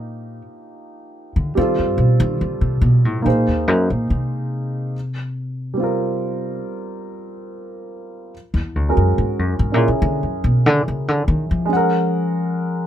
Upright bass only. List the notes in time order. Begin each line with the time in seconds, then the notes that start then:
Already playing: A#2
1.36 D3
1.57 D#3
1.79 G2
1.98 B2
2.20 D#3
2.41 D3
2.61 C3
2.81 B2
3.05 A2
3.26 A#2
3.48 D#2
3.68 F#2
3.90 A#2
4.10 C3
8.54 E2
8.75 D2
8.97 F#2
9.18 G#2
9.39 F#2
9.59 G#2
9.74 A#2
9.88 C#3
10.02 D3
10.23 F#2
10.44 B2
10.66 D3
10.88 C#3
11.08 D3
11.28 D#3
11.51 F3